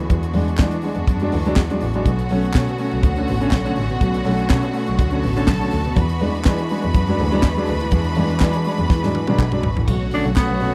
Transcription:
Already playing: D3 G#3 B3 F#4
0.10 E2 E3 D4, kick, closed hi-hat
0.23 closed hi-hat
0.33 E2 G#3 D4, open hi-hat
0.48 closed hi-hat
0.57 E3, kick, snare, clap
0.60 G#3 D4, clap
0.71 E3, closed hi-hat
0.82 G#3 D4, open hi-hat
0.95 E2, closed hi-hat
1.07 F#2, kick, closed hi-hat
1.20 F#3 G#3 D4, closed hi-hat
1.32 D2 E3, open hi-hat
1.46 F#3 G#3 D4, closed hi-hat
1.56 E2, kick, snare, clap
1.70 F#3 G#3 D4, closed hi-hat
1.81 A1 E3, open hi-hat
1.94 F#3 G#3 D4, closed hi-hat
2.04 B1 B2 D3 A3 C#4 F#4 F#5, kick, closed hi-hat
2.19 closed hi-hat
2.29 B1 A3 C#4, open hi-hat
2.45 closed hi-hat
2.53 B2 A3, kick, snare, clap
2.56 C#4, clap
2.68 B2, closed hi-hat
2.78 A3 C#4, open hi-hat
2.91 B1, closed hi-hat
3.03 D2, kick, closed hi-hat
3.16 D3 A3 C#4, closed hi-hat
3.28 A1 B2, open hi-hat
3.41 D3 A3 C#4, closed hi-hat
3.51 B1, kick, snare, clap
3.53 clap
3.65 D3 A3 C#4, closed hi-hat
3.76 A1, open hi-hat
3.90 B2, closed hi-hat
4.00 B1 B2, kick, closed hi-hat
4.14 closed hi-hat
4.25 B1 A3 C#4, open hi-hat
4.39 closed hi-hat
4.49 B2 A3 C#4, kick, snare, clap
4.62 B2, closed hi-hat
4.73 A3 C#4, open hi-hat
4.86 B1, closed hi-hat
4.99 D2, kick, closed hi-hat
5.11 D3 A3 C#4, closed hi-hat
5.23 A1 B2 A4 A5, open hi-hat
5.36 D3 A3 C#4, closed hi-hat
5.47 B1, kick, snare, clap
5.60 D3 A3 C#4, closed hi-hat
5.71 D2, snare, open hi-hat
5.85 B2, closed hi-hat
5.96 E2 E3 G#3 D4 B4 B5, kick, closed hi-hat
6.09 closed hi-hat
6.19 E2 G#3 D4, open hi-hat
6.35 closed hi-hat
6.44 E3, kick, snare, clap
6.46 G#3 D4, clap
6.58 E3, closed hi-hat
6.69 G#3 D4, open hi-hat
6.82 E2, closed hi-hat
6.94 F#2, kick, closed hi-hat
7.07 F#3 G#3 D4, closed hi-hat
7.19 D2 E3, open hi-hat
7.32 F#3 G#3 D4, closed hi-hat
7.42 E2, kick, snare, clap
7.56 F#3 G#3 D4, closed hi-hat
7.66 D2, open hi-hat
7.80 E3, closed hi-hat
7.91 E2 E3, kick, closed hi-hat
8.04 closed hi-hat
8.15 E2 G#3 D4, open hi-hat
8.30 closed hi-hat
8.40 E3 G#3, kick, snare, clap
8.41 D4, clap
8.53 E3, closed hi-hat
8.64 G#3 D4, open hi-hat
8.78 E2, closed hi-hat
8.90 E3, kick, snare
9.03 G#2 F#3 G#3 D4, snare
9.15 E3, high tom
9.27 B2 F#3 G#3 D4, high tom
9.38 B1, kick, clap, mid tom
9.52 F#3 G#3 D4, mid tom
9.63 G#1, floor tom
9.77 A1 E3, floor tom
9.88 B1 B2 D3 A3 B3 F#4 C#5 F#5, kick, crash
10.02 A3 C#4
10.11 D3 A3 C#4 D4, open hi-hat
10.24 B1, closed hi-hat
10.36 A3 B3, kick, snare, clap, closed hi-hat
10.38 C#4, clap
10.49 B1 B2
10.60 B2 A3 C#4, open hi-hat

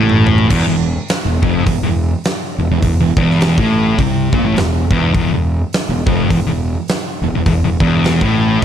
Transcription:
Already playing: A1 A2
0.09 mid tom
0.27 floor tom
0.38 floor tom
0.48 E1 E2, kick, crash
0.67 E1 E2
1.08 snare, open hi-hat
1.26 E1 E2
1.42 F1 F2, kick
1.66 E1 E2, kick, open hi-hat
1.82 E1 E2
2.24 snare, open hi-hat
2.58 E1 E2
2.71 E1 E2
2.82 E1 E2, kick, open hi-hat
2.99 E1 E2
3.16 E1 E2, kick
3.31 snare
3.41 snare, open hi-hat
3.58 A1 A2, kick
3.98 C2 C3, kick, open hi-hat
4.33 A#1 A#2, kick
4.43 A1 A2
4.54 E1 E2, snare, open hi-hat
4.90 E1 E2, kick
5.14 E1 E2, kick, open hi-hat
5.30 E1 E2
5.73 snare, open hi-hat
5.89 E1 E2
6.06 F1 F2, kick
6.29 E1 E2, kick, open hi-hat
6.47 E1 E2
6.88 snare, open hi-hat
7.22 E1 E2
7.34 E1 E2
7.46 E1 E2, kick, open hi-hat
7.63 E1 E2
7.80 E1 E2, kick
8.04 snare, open hi-hat
8.21 A1 A2, kick

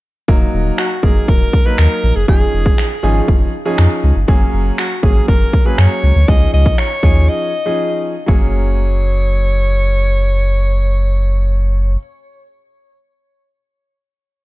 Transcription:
0.28 D#1 F#3 A#3 D#4 A#4, kick
0.53 D#1
0.78 F#4, finger snap
1.03 F#1 F#3 A#3 D#4 G#4 A#4, kick
1.28 D#1 A#4, kick
1.53 kick
1.66 F#3 A#3 D#4 A#4 B4
1.78 D#2 A#4, finger snap
2.03 A#1
2.16 F#1 G#4
2.28 F1 F3 C#4 D#4 G#4, kick
2.53 F1
2.66 kick
2.78 finger snap
3.03 G#1 F3 C#4 D#4 G#4
3.28 F1, kick
3.65 F3 C#4 D#4 G#4
3.78 F2, finger snap
4.03 C#2
4.16 G1
4.28 F#1 F#3 A#3 C#4 G#4, kick
4.53 F#1
4.78 F#4, finger snap
5.03 G#1 F#3 A#3 C#4 G#4, kick
5.28 F#1 A#4, kick
5.53 kick
5.65 F#3 A#3 C#4 G#4 B4
5.78 F#2 C#5, finger snap
6.03 C#2
6.16 D2
6.28 C#2 F3 C#4 D#4 G#4 D#5, kick
6.53 C#2 D#5
6.66 kick
6.78 C#5, finger snap
7.03 D#2 F3 C#4 D#4 G#4, kick
7.29 D#5
7.66 F3 C#4 D#4 G#4
8.26 F#1 F#3 A#3 C#4 C#5, kick
8.30 G#4

